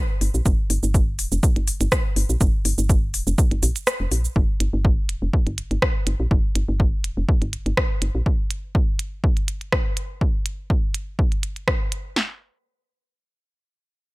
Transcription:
0.21 0.30 G1 loud
0.21 open hi-hat medium
0.34 0.42 A#1 medium
0.34 shaker soft
0.46 0.54 G1 loud
0.46 kick loud
0.46 shaker medium
0.70 0.78 G1 loud
0.70 open hi-hat loud
0.83 1.20 G1 loud
0.83 shaker soft
0.94 kick loud
0.94 shaker medium
1.19 1.27 D1 medium
1.19 open hi-hat medium
1.19 shaker soft
1.32 1.39 F1 loud
1.32 shaker soft
1.43 kick loud
1.43 shaker medium
1.56 1.71 G1 medium
1.56 closed hi-hat soft
1.68 open hi-hat medium
1.68 shaker medium
1.81 1.88 G1 loud
1.81 closed hi-hat soft
1.81 shaker soft
1.92 kick loud
1.92 cross-stick loud
1.92 shaker medium
2.16 2.25 G1 loud
2.16 open hi-hat medium
2.29 2.37 A#1 medium
2.29 shaker soft
2.41 2.49 G1 loud
2.41 kick loud
2.41 shaker medium
2.65 2.73 G1 medium
2.65 open hi-hat medium
2.65 shaker soft
2.78 3.15 G1 loud
2.78 shaker soft
2.89 kick loud
2.89 shaker medium
3.14 3.22 D1 medium
3.14 open hi-hat medium
3.14 shaker soft
3.27 3.34 F1 loud
3.27 shaker soft
3.38 kick loud
3.38 shaker medium
3.51 3.62 G1 loud
3.51 closed hi-hat soft
3.63 3.71 A#1 loud
3.63 open hi-hat medium
3.63 shaker medium
3.76 closed hi-hat soft
3.76 shaker soft
3.87 cross-stick loud
3.87 shaker medium
4.00 4.07 F1 medium
4.11 4.28 A#1 medium
4.11 open hi-hat medium
4.11 shaker soft
4.25 shaker soft
4.36 4.44 G1 loud
4.36 kick loud
4.60 4.69 G1 medium
4.60 closed hi-hat medium
4.73 5.11 G1 loud
4.85 kick loud
5.09 5.17 D1 medium
5.09 closed hi-hat medium
5.22 5.29 F1 loud
5.33 kick loud
5.47 5.61 G1 loud
5.47 closed hi-hat soft
5.58 closed hi-hat medium
5.71 5.78 G1 loud
5.71 closed hi-hat soft
5.82 kick loud
5.82 cross-stick loud
6.07 6.15 G1 loud
6.07 closed hi-hat medium
6.20 6.27 A#1 medium
6.31 6.39 G1 loud
6.31 kick loud
6.55 6.64 G1 medium
6.55 closed hi-hat loud
6.69 7.06 G1 loud
6.80 kick loud
7.04 7.12 D1 medium
7.04 closed hi-hat loud
7.17 7.24 F1 loud
7.29 kick loud
7.42 7.56 G1 loud
7.42 closed hi-hat soft
7.53 closed hi-hat medium
7.66 7.73 G1 loud
7.66 closed hi-hat soft
7.77 kick loud
7.77 cross-stick loud
8.02 8.10 G1 medium
8.02 closed hi-hat medium
8.15 8.22 A#1 medium
8.26 kick loud
8.51 closed hi-hat medium
8.75 kick loud
8.99 closed hi-hat loud
9.24 kick loud
9.37 closed hi-hat soft
9.48 closed hi-hat medium
9.61 closed hi-hat soft
9.72 kick loud
9.72 cross-stick loud
9.97 closed hi-hat medium
10.21 kick loud
10.46 closed hi-hat loud
10.70 kick loud
10.94 closed hi-hat loud
11.19 kick loud
11.32 closed hi-hat soft
11.43 closed hi-hat medium
11.56 closed hi-hat soft
11.68 kick loud
11.68 cross-stick loud
11.92 closed hi-hat medium
12.16 snare medium

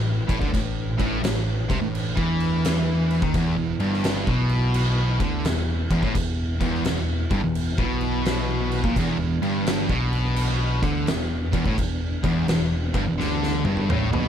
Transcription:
0.00 0.26 A1 medium
0.00 0.19 A2 medium
0.00 3.29 A3 medium
0.00 0.50 E4 medium
0.00 3.30 B4 medium
0.29 0.40 A1 loud
0.29 0.40 A2 loud
0.29 kick loud
0.29 crash medium
0.41 0.53 D2 loud
0.41 0.53 D3 loud
0.41 kick loud
0.53 0.96 A1 medium
0.53 0.90 A2 medium
0.53 3.31 D4 medium
0.53 kick loud
0.53 crash medium
0.99 1.22 A1 loud
0.99 1.22 A2 loud
0.99 kick loud
0.99 crash medium
1.24 1.67 A1 medium
1.24 1.60 A2 medium
1.24 snare loud
1.24 crash medium
1.69 1.81 C2 medium
1.69 1.81 C3 loud
1.69 kick loud
1.69 crash medium
1.82 2.14 A1 medium
1.82 2.08 A2 medium
1.95 crash medium
2.17 3.18 E2 loud
2.17 3.21 E3 loud
2.17 kick loud
2.40 crash medium
2.65 snare loud
2.65 crash medium
3.11 crash medium
3.22 3.33 D#2 loud
3.22 3.34 D#3 loud
3.22 kick loud
3.34 3.55 E1 loud
3.34 3.56 E2 loud
3.34 14.28 E3 medium
3.34 14.28 B3 medium
3.34 8.92 E4 medium
3.34 kick loud
3.34 crash medium
3.57 3.78 E1 medium
3.57 3.80 E2 medium
3.79 4.24 G1 loud
3.79 4.26 G2 loud
3.79 crash medium
3.94 snare soft
4.04 snare loud
4.04 crash medium
4.27 5.16 B1 loud
4.27 5.19 B2 loud
4.27 kick loud
4.49 crash medium
4.74 crash medium
5.20 5.43 D2 medium
5.20 5.44 D3 loud
5.20 kick loud
5.20 crash medium
5.45 5.87 E1 medium
5.45 5.82 E2 medium
5.45 snare loud
5.45 crash medium
5.90 6.02 E1 loud
5.90 6.02 E2 loud
5.90 kick loud
5.90 crash medium
6.02 6.14 A1 loud
6.02 6.14 A2 loud
6.02 kick loud
6.14 6.57 E1 medium
6.14 6.51 E2 medium
6.14 kick loud
6.14 crash medium
6.60 6.83 E1 loud
6.60 6.84 E2 loud
6.60 kick loud
6.60 crash medium
6.75 snare soft
6.84 7.27 E1 medium
6.84 7.22 E2 medium
6.84 snare loud
6.84 crash loud
7.30 7.42 G1 medium
7.30 7.42 G2 loud
7.30 kick loud
7.30 crash medium
7.43 7.76 E1 medium
7.43 7.69 E2 medium
7.55 crash medium
7.78 8.80 B1 loud
7.78 8.83 B2 loud
7.78 kick loud
8.01 crash medium
8.25 snare loud
8.25 crash medium
8.72 crash medium
8.84 8.95 A#1 medium
8.84 8.96 A#2 loud
8.84 kick loud
8.96 9.17 E1 loud
8.96 9.18 E2 loud
8.96 14.28 D4 medium
8.96 kick loud
8.96 crash medium
9.19 9.40 E1 medium
9.19 9.42 E2 medium
9.42 9.86 G1 loud
9.42 9.88 G2 loud
9.42 crash medium
9.67 snare loud
9.67 crash medium
9.89 10.79 B1 loud
9.89 10.81 B2 loud
9.89 kick loud
10.13 crash medium
10.36 crash medium
10.82 11.05 D2 medium
10.82 11.06 D3 loud
10.82 kick loud
10.82 crash medium
11.07 11.50 E1 medium
11.07 11.44 E2 medium
11.07 snare loud
11.07 crash medium
11.53 11.64 E1 loud
11.53 11.64 E2 loud
11.53 kick loud
11.53 crash medium
11.65 11.77 A1 medium
11.65 11.77 A2 loud
11.65 kick loud
11.77 12.20 E1 medium
11.77 12.14 E2 medium
11.77 kick loud
11.77 crash medium
12.23 12.46 E1 loud
12.23 12.47 E2 loud
12.23 kick loud
12.23 crash medium
12.48 12.91 E1 medium
12.48 12.85 E2 medium
12.48 snare loud
12.48 crash medium
12.94 13.06 G1 medium
12.94 13.06 G2 loud
12.94 kick loud
12.94 crash medium
13.07 13.18 E1 medium
13.07 13.19 E2 medium
13.18 13.61 D2 medium
13.18 13.63 D3 loud
13.18 snare medium
13.43 snare medium
13.64 13.87 G1 medium
13.64 13.88 G2 loud
13.64 high tom medium
13.77 high tom medium
13.89 14.10 A1 medium
13.89 14.11 A2 loud
13.89 mid tom medium
14.12 14.28 B1 medium
14.12 14.28 B2 medium
14.12 mid tom medium

